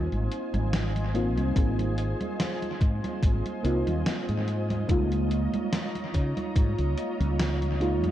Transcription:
Already playing: A#3 C4 D#4 F4 C5 D#5 G#5
0.12 G#1, closed hi-hat, high conga
0.32 closed hi-hat
0.54 G#1, closed hi-hat, high conga
0.73 snare, closed hi-hat, high conga
0.96 closed hi-hat, high conga
1.14 A#3 C4 D#4 F4, closed hi-hat
1.37 C2, closed hi-hat, high conga
1.55 G#1 A#3 C4 D#4 G#4, kick, closed hi-hat, high conga
1.79 closed hi-hat, high conga
1.98 closed hi-hat
2.21 closed hi-hat, high conga
2.40 snare, closed hi-hat, high conga
2.62 closed hi-hat, high conga
2.81 G#2, kick, closed hi-hat
3.04 closed hi-hat, high conga
3.23 G#1, kick, closed hi-hat, high conga
3.46 closed hi-hat, high conga
3.63 C2 A#3 C4 D#4 F4, closed hi-hat
3.87 D#2, closed hi-hat, high conga
4.06 snare, closed hi-hat, high conga
4.29 G#2, closed hi-hat, high conga
4.48 closed hi-hat
4.70 closed hi-hat, high conga
4.88 C#2 G#3 A#3 D#4 F4 C#5 A#5, kick, closed hi-hat, high conga
5.12 closed hi-hat, high conga
5.31 closed hi-hat
5.54 closed hi-hat, high conga
5.73 snare, closed hi-hat, high conga
5.95 closed hi-hat, high conga
6.14 C#3, kick, closed hi-hat
6.37 closed hi-hat, high conga
6.56 G#2, kick, closed hi-hat, high conga
6.79 C#2, closed hi-hat, high conga
6.98 closed hi-hat
7.20 C#2, closed hi-hat, high conga
7.39 snare, closed hi-hat, high conga
7.62 closed hi-hat, high conga
7.80 G#3 A#3 D#4 F4, closed hi-hat
8.04 F2, closed hi-hat, high conga

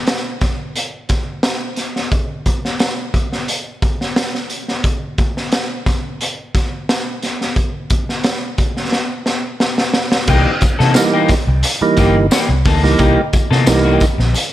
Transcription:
0.07 snare, closed hi-hat
0.41 kick, snare, closed hi-hat
0.76 closed hi-hat
1.09 kick, snare, closed hi-hat
1.43 snare, closed hi-hat
1.76 snare, closed hi-hat
1.96 snare
2.11 kick, closed hi-hat
2.46 kick, closed hi-hat
2.65 snare
2.79 snare, closed hi-hat
3.14 kick, closed hi-hat
3.32 snare
3.48 closed hi-hat
3.82 kick, closed hi-hat
4.01 snare
4.16 snare, closed hi-hat
4.35 snare
4.50 closed hi-hat
4.68 snare
4.84 kick, closed hi-hat
5.18 kick, closed hi-hat
5.37 snare
5.52 snare, closed hi-hat
5.86 kick, snare, closed hi-hat
6.21 closed hi-hat
6.55 kick, snare, closed hi-hat
6.89 snare, closed hi-hat
7.23 snare, closed hi-hat
7.41 snare
7.56 kick, closed hi-hat
7.90 kick, closed hi-hat
8.09 snare
8.24 snare, closed hi-hat
8.58 kick, closed hi-hat
8.77 snare
8.92 snare
9.26 snare
9.60 snare
9.78 snare
9.94 snare
10.12 snare
10.27 C2 E3 A#3 D#4 G4, kick, crash, tambourine
10.61 muted clean electric guitar stroke, muted fingered electric bass stroke, kick, closed hi-hat, tambourine
10.79 C3 E3 A#3 D#4 A4, snare
10.94 E3 G3 A#3 D#4, snare, closed hi-hat, tambourine
11.13 E3 A#3 D#4 G4
11.28 muted fingered electric bass stroke, muted clean electric guitar stroke, kick, snare, closed hi-hat, tambourine
11.47 C2, muted clean electric guitar stroke
11.63 muted clean electric guitar stroke, closed hi-hat, tambourine
11.81 E3 G3 A#3 D#4, muted fingered electric bass stroke, muted clean electric guitar stroke
11.97 G1 E3 A#3 D#4 G4, kick, snare, closed hi-hat, tambourine
12.17 muted clean electric guitar stroke
12.31 E3 A#3 D#4 G4, snare, closed hi-hat, tambourine
12.49 C2, muted clean electric guitar stroke
12.65 D2 E3 A#3 D#4 A4, kick, snare, open hi-hat
12.83 C#2 E3 G3 A#3 D#4, muted clean electric guitar stroke, snare
12.98 C2 E3 A#3 D#4 G4, kick, closed hi-hat, tambourine
13.33 muted clean electric guitar stroke, muted fingered electric bass stroke, kick, closed hi-hat, tambourine
13.51 C3 E3 A#3 D#4 A4, snare
13.66 C2 E3 G3 A#3 D#4, muted clean electric guitar stroke, snare, closed hi-hat, tambourine
13.85 E3 A#3 D#4 G4
14.00 muted clean electric guitar stroke, kick, closed hi-hat, tambourine
14.18 A#1, muted clean electric guitar stroke, snare
14.33 muted clean electric guitar stroke, closed hi-hat, tambourine

